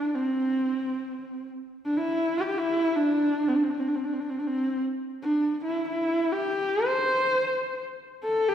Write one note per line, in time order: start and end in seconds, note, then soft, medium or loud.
0.00 0.16 D4 medium
0.15 1.48 C4 medium
1.85 1.99 D4 medium
1.97 2.39 E4 medium
2.38 2.47 G4 medium
2.47 2.60 G4 medium
2.58 2.97 E4 medium
2.96 3.50 D4 medium
3.48 3.57 C4 medium
3.56 3.64 D4 medium
3.63 3.72 C4 soft
3.70 3.81 D4 medium
3.80 3.90 C4 medium
3.88 3.97 D4 medium
3.96 4.06 C4 soft
4.05 4.15 D4 medium
4.13 4.22 C4 medium
4.20 4.31 D4 soft
4.30 4.40 C4 medium
4.39 4.49 D4 medium
4.47 4.82 C4 medium
5.23 5.60 D4 medium
5.64 5.86 E4 medium
5.88 6.34 E4 medium
6.32 6.88 G4 medium
6.86 7.84 C5 medium
8.23 8.50 A4 medium
8.48 8.55 G4 medium